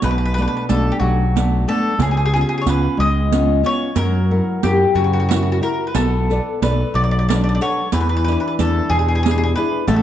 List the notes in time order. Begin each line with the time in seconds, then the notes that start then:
0.02 B1 B2 B4, riq
0.11 B4
0.18 B4
0.26 B4
0.34 A3 B4
0.38 B3 D4 B4, riq
0.48 B4
0.57 B4
0.69 B1 A3 B3 D4 A4, riq
0.92 G4
1.00 B1 F#3 F#4
1.36 A3 B3 D4, riq
1.68 A3 B3 D4 A4, riq
1.99 C#2 C#3 G#4, riq
2.11 G#4
2.17 G#4
2.26 G#4
2.34 B3 C#4 F4 G#4, riq
2.41 G#4
2.49 G#4
2.58 G#4 C#5
2.66 C#2 B3 C#4 F4 B4, riq
2.97 C#2 G#3 D#5
3.32 B3 C#4 F4, riq
3.63 B3 C#4 F4 C#5, riq
3.95 F#2 F#3 A#4, riq
4.31 E4 A#4 F#5
4.63 F#2 F#3 E4 G4 A#4, riq
4.95 F#2 C#3 F#4
5.04 F#4
5.13 F#4
5.20 F#4
5.29 E4 F#4 A#4, riq
5.36 F#4
5.43 F#4
5.52 F#4
5.62 E4 F#4 A#4, riq
5.87 B4
5.95 B1 B3 A4, riq
6.30 A4 B4 D5, riq
6.62 B1 A4 B4 D5, riq
6.94 B1 F#3 D5
7.04 D5
7.11 D5
7.19 D5
7.29 D4 A4 B4 D5, riq
7.36 D5
7.44 D5
7.49 D5
7.55 D5
7.61 A4 B4 C#5 F#5, riq
7.92 E2 E3 B4, riq
8.01 B4
8.09 B4
8.17 B4
8.24 D4 E4 B4, riq
8.29 B4
8.40 B4
8.48 B4
8.59 E2 D4 E4 A4, riq
8.90 E2 B2 G#4
8.99 G#4
9.08 G#4
9.15 G#4
9.23 D4 E4 G#4, riq
9.31 G#4
9.38 G#4
9.44 G#4
9.56 D4 E4 G#4 B4, riq
9.88 A1 A3 A4, riq
9.96 A4